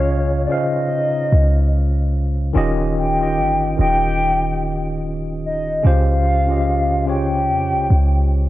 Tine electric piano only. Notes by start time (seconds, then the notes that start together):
Already playing: C#3 C#4 F4 C#5 D#5 F5
0.48 C#3 C#4 F4 C5
0.52 F5
2.53 D#3 C#4 F4 G4
2.57 D#5
3.18 D#3 C#4 F4 G4
3.23 D#5
3.77 D#3 C#4 F4 G4
3.81 D#5
5.83 C#3 C#4 F4 G4
5.87 C5
6.47 C#3 C#4 F4 G4
6.51 D#5
7.05 C#3 C#4 F4 G4
7.10 C#5